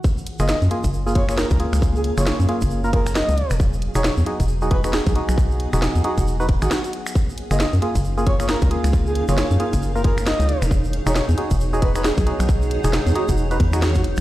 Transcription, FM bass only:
X:1
M:4/4
L:1/16
Q:"Swing 16ths" 1/4=135
K:F#
V:1 name="FM bass" clef=bass
z3 F,,, z F,, z F,,,6 C,, z C,,- | C,,3 F,,, z F,, z F,,,6 C,, z =E,,,- | =E,,,3 E,,, z =E,, z E,,,6 B,,, z B,,,- | B,,,3 =E,,, z =E,, z E,,,3 E,,, G,,, z4 |
z3 F,,, z F,, z F,,,6 C,, z C,,- | C,,3 F,,, z F,, z F,,,6 C,, z =E,,,- | =E,,,3 E,,, z =E,, z E,,,6 B,,, z B,,,- | B,,,3 =E,,, z =E,, z E,,,3 E,,4 E,,, z |]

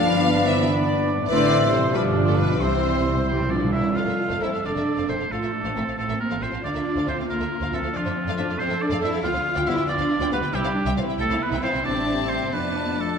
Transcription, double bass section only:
X:1
M:6/8
L:1/16
Q:3/8=91
K:C
V:1 name="Double bass section" clef=bass
G,,,12 | A,,,6 G,,,6 | C,,8- C,,2 z2 | [K:F] F,,, F,,, z F,,, F,,, F,,, F,,, F,,, z F,,, F,,, F,,, |
A,,, A,,, z A,,, A,,, A,,, A,,, A,,, z A,,, A,,, A,,, | D,, D,, z D,, D,, D,, D,, D,, z D,, D,, D,, | F,, F,, z F,, F,, F,, F,, F,, z F,, F,, F,, | [K:C] D,, D,, z D,, D,, D,, D,, D,, z D,, D,, D,, |
C,, C,, z C,, C,, C,, C,, C,, z C,, C,, C,, | A,,,6 F,,,6 |]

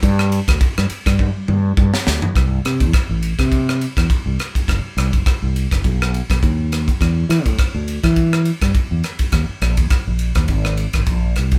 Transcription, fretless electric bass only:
X:1
M:4/4
L:1/16
Q:"Swing 16ths" 1/4=103
K:Gdor
V:1 name="Fretless electric bass" clef=bass
G,,3 D,, z G,, z G,,2 z G,,2 G,, z D,, z | [K:Bphr] C,,2 C, E,, z A,,,2 C,4 E,, z C,, z2 | F,,, z C,, F,,, z C,,2 F,,, B,,,3 B,,, ^D,,4 | E,,2 E, A,, z D,,2 E,4 G,, z E,, z2 |
_E,, z _B,,, E,, z B,,,2 E,, _A,,,3 A,,, B,,,2 C,,2 |]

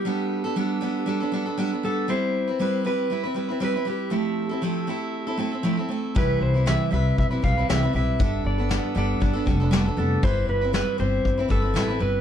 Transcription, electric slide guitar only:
X:1
M:4/4
L:1/8
Q:"Swing 16ths" 1/4=118
K:C
V:1 name="Electric slide guitar"
G4- G z2 A | c3 B3 B G- | G4- G z3 | B c e e e f e e- |
e d2 d2 z2 A | c B B c2 A2 B |]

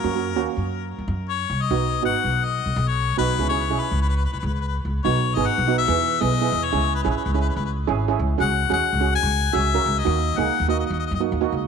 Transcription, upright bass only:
X:1
M:4/4
L:1/16
Q:"Swing 16ths" 1/4=144
K:B
V:1 name="Upright bass" clef=bass
F,,3 D,, z F,,4 F,, F,,4 =C,,2 | B,,,3 G,,, z B,,,4 B,,, B,,,4 B,,,2 | C,,3 B,,, z C,,4 C,, C,,4 C,,2 | B,,,3 G,,, z B,,,3 E,,3 B,,,3 E,,2 |
C,,3 A,,, z C,,3 C,,3 G,,,3 C,,2 | C,,3 D,, z C,,3 C,,3 C,,3 C,,2 | D,,3 C,, z D,,3 D,,2 F,,2 D,,2 C,,2 |]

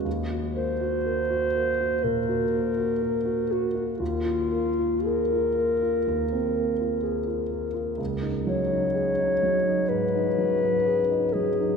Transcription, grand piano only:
X:1
M:4/4
L:1/16
Q:1/4=62
K:Ebdor
V:1 name="Grand piano"
E,, G B, G B G B, G B,, G B, G B G B, G | E,, F B, F A F B, F E,, C B, F A F B, F | D,, E G, E A E G, E A,, E G, E A E G, E |]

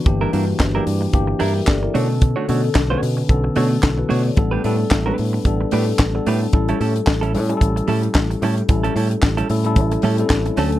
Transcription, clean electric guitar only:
X:1
M:4/4
L:1/16
Q:"Swing 16ths" 1/4=111
K:Amix
V:1 name="Clean electric guitar"
z [G,DE_B] [G,DEB] z2 [G,DEB] z4 [G,DEB] z3 [A,DFc] z | z [A,DFc] [A,DFc] z2 [A,DFc] z4 [A,DFc] z3 [A,DFc] z | z [A,DGB] [A,DGB] z2 [A,DGB] z4 [A,DGB] z3 [A,DGB] z | z [G,CEA] [G,CEA] z2 [G,CEA] z4 [G,CEA] z3 [G,CEA] z |
z [G,CEA] [G,CEA] z2 [G,CEA] z4 [G,CEA] z3 [A,CFA] z |]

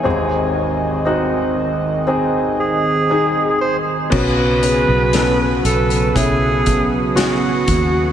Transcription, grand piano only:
X:1
M:4/4
L:1/8
Q:1/4=59
K:Bmix
V:1 name="Grand piano"
[^B,DG]2 [B,DF]2 [B,DG]2 [B,DG]2 | [B,CF] [B,CG] [B,CA]2 [B,CE]2 [B,CF]2 |]
V:2 name="Grand piano" clef=bass
[G,,,D,,]8 | z8 |]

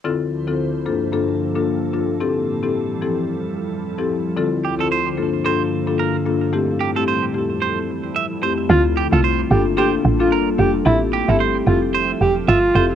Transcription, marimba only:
X:1
M:4/4
L:1/16
Q:"Swing 16ths" 1/4=111
K:Dm
V:1 name="Marimba"
[D,CEFA]2 z [D,CEFA] z2 [G,,B,DFA]2 [G,,B,DFA]3 [G,,B,DFA] z2 [G,,B,DFA]2 | [CEGA]3 [CEGA] z2 [F,CEGA]2 z4 z [F,CEGA] z2 | [D,CEFA]2 z [D,CEFA] z2 [G,,B,DFA]2 [G,,B,DFA]3 [G,,B,DFA] z2 [G,,B,DFA]2 | [A,CEG]3 [A,CEG] z2 [F,,A,CEG]2 z6 [F,,A,CEG]2 |
[A,CEF]2 z [A,CEF] z2 [B,DFA]2 [B,DFA]3 [B,DFA] z2 [B,DFA]2 | [CEGA]3 [CEGA] z2 [CEGA]2 z6 [CEGA]2 |]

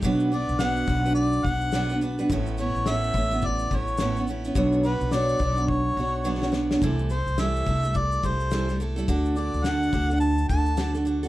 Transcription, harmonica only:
X:1
M:4/4
L:1/8
Q:"Swing 16ths" 1/4=106
K:Bm
V:1 name="Harmonica"
z d f2 d f2 z | z c e2 d c2 z | z B d2 c3 z | z =c e2 d c2 z |
z d f2 a a2 z |]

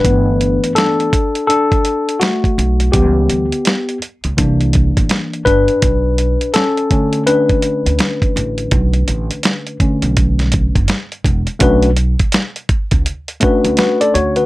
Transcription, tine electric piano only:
X:1
M:4/4
L:1/16
Q:"Swing 16ths" 1/4=83
K:Bm
V:1 name="Tine electric piano"
[DB]4 [DA]4 [DA]4 [A,F]4 | G6 z8 [DB]2- | [DB]4 [CA]4 [DB]8- | [DB]12 z4 |
z12 [FB] [Ad] [Fc] [FB] |]
V:2 name="Tine electric piano"
[E,A,B,]6 z8 z2 | [E,G,B,]2 z6 [E,_B,D]6 z2 | z6 [D,A,C]8- [D,A,C]2- | [D,A,C]6 [D,A,C]6 z4 |
[A,CDFB]2 z8 [A,CDFB]6 |]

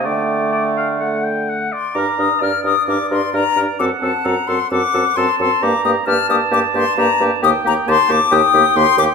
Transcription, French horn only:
X:1
M:4/4
L:1/8
Q:1/4=131
K:Gm
V:1 name="French horn"
A,4 A,3 z | D D D D D D D D | C C C C C C C C | B, B, B, B, B, B, B, B, |
B, B, B, B, B, B, B, B, |]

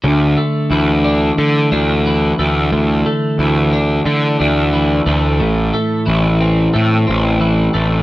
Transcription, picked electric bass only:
X:1
M:4/4
L:1/8
Q:1/4=90
K:Ddor
V:1 name="Picked electric bass" clef=bass
D,, z D,,2 D, D,,2 D,, | D,, z D,,2 D, D,,2 D,, | A,,, z A,,,2 A,, A,,,2 A,,, |]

